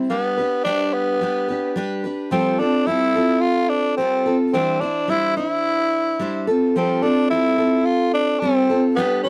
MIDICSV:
0, 0, Header, 1, 3, 480
1, 0, Start_track
1, 0, Tempo, 555042
1, 85, Time_signature, 4, 2, 24, 8
1, 8035, End_track
2, 0, Start_track
2, 0, Title_t, "Steel-string acoustic guitar"
2, 0, Program_c, 0, 25
2, 0, Note_on_c, 0, 64, 52
2, 84, Note_on_c, 0, 55, 63
2, 88, Note_on_c, 0, 62, 63
2, 89, Note_off_c, 0, 64, 0
2, 99, Note_on_c, 0, 67, 64
2, 101, Note_on_c, 0, 71, 67
2, 314, Note_off_c, 0, 71, 0
2, 325, Note_off_c, 0, 55, 0
2, 325, Note_on_c, 0, 71, 48
2, 327, Note_off_c, 0, 62, 0
2, 329, Note_off_c, 0, 67, 0
2, 340, Note_on_c, 0, 67, 43
2, 349, Note_on_c, 0, 62, 39
2, 561, Note_off_c, 0, 62, 0
2, 561, Note_on_c, 0, 55, 63
2, 566, Note_off_c, 0, 67, 0
2, 566, Note_off_c, 0, 71, 0
2, 572, Note_on_c, 0, 62, 74
2, 576, Note_on_c, 0, 67, 84
2, 582, Note_on_c, 0, 71, 74
2, 1035, Note_off_c, 0, 55, 0
2, 1044, Note_off_c, 0, 62, 0
2, 1045, Note_on_c, 0, 55, 55
2, 1053, Note_off_c, 0, 67, 0
2, 1054, Note_on_c, 0, 62, 53
2, 1056, Note_off_c, 0, 71, 0
2, 1064, Note_on_c, 0, 67, 60
2, 1070, Note_on_c, 0, 71, 56
2, 1273, Note_off_c, 0, 71, 0
2, 1283, Note_on_c, 0, 71, 48
2, 1287, Note_off_c, 0, 55, 0
2, 1290, Note_off_c, 0, 67, 0
2, 1292, Note_off_c, 0, 62, 0
2, 1300, Note_on_c, 0, 67, 46
2, 1311, Note_on_c, 0, 62, 38
2, 1519, Note_off_c, 0, 62, 0
2, 1519, Note_on_c, 0, 55, 75
2, 1524, Note_off_c, 0, 67, 0
2, 1526, Note_off_c, 0, 71, 0
2, 1530, Note_on_c, 0, 62, 84
2, 1534, Note_on_c, 0, 67, 74
2, 1540, Note_on_c, 0, 71, 84
2, 1752, Note_off_c, 0, 71, 0
2, 1763, Note_on_c, 0, 71, 52
2, 1764, Note_off_c, 0, 55, 0
2, 1767, Note_off_c, 0, 67, 0
2, 1770, Note_off_c, 0, 62, 0
2, 1778, Note_on_c, 0, 67, 50
2, 1788, Note_on_c, 0, 62, 46
2, 1998, Note_on_c, 0, 53, 62
2, 2003, Note_off_c, 0, 62, 0
2, 2005, Note_on_c, 0, 55, 70
2, 2007, Note_off_c, 0, 67, 0
2, 2007, Note_off_c, 0, 71, 0
2, 2007, Note_on_c, 0, 60, 74
2, 2011, Note_on_c, 0, 65, 75
2, 2016, Note_on_c, 0, 69, 75
2, 2230, Note_off_c, 0, 69, 0
2, 2241, Note_on_c, 0, 69, 53
2, 2244, Note_off_c, 0, 53, 0
2, 2245, Note_off_c, 0, 65, 0
2, 2248, Note_off_c, 0, 55, 0
2, 2249, Note_off_c, 0, 60, 0
2, 2256, Note_on_c, 0, 65, 51
2, 2270, Note_on_c, 0, 60, 41
2, 2479, Note_on_c, 0, 55, 54
2, 2482, Note_off_c, 0, 60, 0
2, 2486, Note_off_c, 0, 69, 0
2, 2488, Note_off_c, 0, 65, 0
2, 2492, Note_on_c, 0, 60, 62
2, 2499, Note_on_c, 0, 65, 58
2, 2509, Note_on_c, 0, 69, 69
2, 2715, Note_off_c, 0, 69, 0
2, 2725, Note_off_c, 0, 55, 0
2, 2725, Note_off_c, 0, 65, 0
2, 2725, Note_on_c, 0, 69, 52
2, 2731, Note_off_c, 0, 60, 0
2, 2735, Note_on_c, 0, 65, 47
2, 2749, Note_on_c, 0, 60, 41
2, 3442, Note_on_c, 0, 55, 57
2, 3448, Note_off_c, 0, 69, 0
2, 3454, Note_off_c, 0, 60, 0
2, 3454, Note_off_c, 0, 65, 0
2, 3457, Note_on_c, 0, 60, 55
2, 3465, Note_on_c, 0, 65, 60
2, 3471, Note_on_c, 0, 69, 63
2, 3672, Note_off_c, 0, 69, 0
2, 3683, Note_on_c, 0, 69, 49
2, 3686, Note_off_c, 0, 55, 0
2, 3687, Note_off_c, 0, 65, 0
2, 3694, Note_off_c, 0, 60, 0
2, 3697, Note_on_c, 0, 65, 49
2, 3708, Note_on_c, 0, 60, 43
2, 3922, Note_on_c, 0, 52, 69
2, 3926, Note_off_c, 0, 60, 0
2, 3926, Note_on_c, 0, 55, 63
2, 3927, Note_off_c, 0, 69, 0
2, 3930, Note_off_c, 0, 65, 0
2, 3930, Note_on_c, 0, 62, 72
2, 3934, Note_on_c, 0, 64, 72
2, 3942, Note_on_c, 0, 72, 71
2, 4152, Note_off_c, 0, 72, 0
2, 4162, Note_on_c, 0, 72, 53
2, 4166, Note_off_c, 0, 52, 0
2, 4167, Note_off_c, 0, 64, 0
2, 4168, Note_off_c, 0, 55, 0
2, 4170, Note_off_c, 0, 62, 0
2, 4177, Note_on_c, 0, 64, 49
2, 4189, Note_on_c, 0, 62, 48
2, 4392, Note_on_c, 0, 55, 60
2, 4393, Note_off_c, 0, 62, 0
2, 4403, Note_on_c, 0, 62, 60
2, 4404, Note_off_c, 0, 64, 0
2, 4407, Note_off_c, 0, 72, 0
2, 4415, Note_on_c, 0, 64, 61
2, 4424, Note_on_c, 0, 72, 66
2, 4630, Note_off_c, 0, 72, 0
2, 4640, Note_on_c, 0, 72, 55
2, 4641, Note_off_c, 0, 55, 0
2, 4642, Note_off_c, 0, 64, 0
2, 4647, Note_off_c, 0, 62, 0
2, 4653, Note_on_c, 0, 64, 47
2, 4666, Note_on_c, 0, 62, 43
2, 5354, Note_off_c, 0, 62, 0
2, 5357, Note_on_c, 0, 55, 66
2, 5364, Note_on_c, 0, 62, 56
2, 5365, Note_off_c, 0, 64, 0
2, 5365, Note_off_c, 0, 72, 0
2, 5375, Note_on_c, 0, 64, 71
2, 5381, Note_on_c, 0, 72, 66
2, 5595, Note_off_c, 0, 72, 0
2, 5598, Note_on_c, 0, 69, 67
2, 5603, Note_off_c, 0, 55, 0
2, 5607, Note_off_c, 0, 62, 0
2, 5612, Note_off_c, 0, 64, 0
2, 5617, Note_on_c, 0, 65, 50
2, 5628, Note_on_c, 0, 60, 48
2, 5843, Note_off_c, 0, 60, 0
2, 5843, Note_on_c, 0, 53, 74
2, 5844, Note_off_c, 0, 69, 0
2, 5848, Note_off_c, 0, 65, 0
2, 5850, Note_on_c, 0, 55, 71
2, 5853, Note_on_c, 0, 60, 70
2, 5858, Note_on_c, 0, 65, 67
2, 5864, Note_on_c, 0, 69, 83
2, 6064, Note_off_c, 0, 69, 0
2, 6075, Note_on_c, 0, 69, 55
2, 6080, Note_off_c, 0, 65, 0
2, 6086, Note_off_c, 0, 53, 0
2, 6089, Note_off_c, 0, 55, 0
2, 6091, Note_off_c, 0, 60, 0
2, 6091, Note_on_c, 0, 65, 47
2, 6105, Note_on_c, 0, 60, 45
2, 6318, Note_on_c, 0, 55, 50
2, 6321, Note_off_c, 0, 60, 0
2, 6322, Note_off_c, 0, 69, 0
2, 6327, Note_off_c, 0, 65, 0
2, 6331, Note_on_c, 0, 60, 62
2, 6337, Note_on_c, 0, 65, 61
2, 6347, Note_on_c, 0, 69, 66
2, 6544, Note_off_c, 0, 69, 0
2, 6554, Note_on_c, 0, 69, 48
2, 6561, Note_off_c, 0, 65, 0
2, 6563, Note_off_c, 0, 55, 0
2, 6570, Note_off_c, 0, 60, 0
2, 6572, Note_on_c, 0, 65, 45
2, 6586, Note_on_c, 0, 60, 42
2, 7280, Note_off_c, 0, 69, 0
2, 7281, Note_on_c, 0, 55, 62
2, 7284, Note_off_c, 0, 60, 0
2, 7289, Note_off_c, 0, 65, 0
2, 7295, Note_on_c, 0, 60, 65
2, 7303, Note_on_c, 0, 65, 58
2, 7310, Note_on_c, 0, 69, 64
2, 7512, Note_off_c, 0, 69, 0
2, 7522, Note_on_c, 0, 69, 55
2, 7524, Note_off_c, 0, 55, 0
2, 7525, Note_off_c, 0, 65, 0
2, 7530, Note_off_c, 0, 60, 0
2, 7535, Note_on_c, 0, 65, 51
2, 7547, Note_on_c, 0, 60, 42
2, 7757, Note_on_c, 0, 55, 72
2, 7763, Note_off_c, 0, 60, 0
2, 7764, Note_off_c, 0, 69, 0
2, 7766, Note_on_c, 0, 62, 72
2, 7768, Note_off_c, 0, 65, 0
2, 7772, Note_on_c, 0, 67, 83
2, 7777, Note_on_c, 0, 71, 79
2, 7984, Note_off_c, 0, 71, 0
2, 7994, Note_on_c, 0, 71, 57
2, 8000, Note_off_c, 0, 67, 0
2, 8001, Note_off_c, 0, 55, 0
2, 8006, Note_off_c, 0, 62, 0
2, 8035, Note_off_c, 0, 71, 0
2, 8035, End_track
3, 0, Start_track
3, 0, Title_t, "Tenor saxophone"
3, 0, Program_c, 1, 66
3, 89, Note_on_c, 1, 59, 81
3, 535, Note_off_c, 1, 59, 0
3, 555, Note_on_c, 1, 62, 97
3, 807, Note_on_c, 1, 59, 86
3, 819, Note_off_c, 1, 62, 0
3, 1529, Note_off_c, 1, 59, 0
3, 2006, Note_on_c, 1, 60, 78
3, 2242, Note_on_c, 1, 62, 84
3, 2255, Note_off_c, 1, 60, 0
3, 2478, Note_on_c, 1, 64, 102
3, 2491, Note_off_c, 1, 62, 0
3, 2949, Note_on_c, 1, 65, 91
3, 2962, Note_off_c, 1, 64, 0
3, 3193, Note_on_c, 1, 62, 99
3, 3206, Note_off_c, 1, 65, 0
3, 3428, Note_off_c, 1, 62, 0
3, 3433, Note_on_c, 1, 60, 82
3, 3776, Note_off_c, 1, 60, 0
3, 3922, Note_on_c, 1, 60, 83
3, 4157, Note_on_c, 1, 62, 81
3, 4170, Note_off_c, 1, 60, 0
3, 4408, Note_on_c, 1, 64, 99
3, 4421, Note_off_c, 1, 62, 0
3, 4638, Note_off_c, 1, 64, 0
3, 4643, Note_on_c, 1, 64, 87
3, 5572, Note_off_c, 1, 64, 0
3, 5855, Note_on_c, 1, 60, 80
3, 6078, Note_on_c, 1, 62, 84
3, 6091, Note_off_c, 1, 60, 0
3, 6312, Note_off_c, 1, 62, 0
3, 6318, Note_on_c, 1, 64, 96
3, 6792, Note_on_c, 1, 65, 82
3, 6805, Note_off_c, 1, 64, 0
3, 7031, Note_off_c, 1, 65, 0
3, 7036, Note_on_c, 1, 62, 94
3, 7262, Note_on_c, 1, 60, 91
3, 7275, Note_off_c, 1, 62, 0
3, 7634, Note_off_c, 1, 60, 0
3, 7747, Note_on_c, 1, 59, 84
3, 7979, Note_off_c, 1, 59, 0
3, 7987, Note_on_c, 1, 62, 82
3, 8035, Note_off_c, 1, 62, 0
3, 8035, End_track
0, 0, End_of_file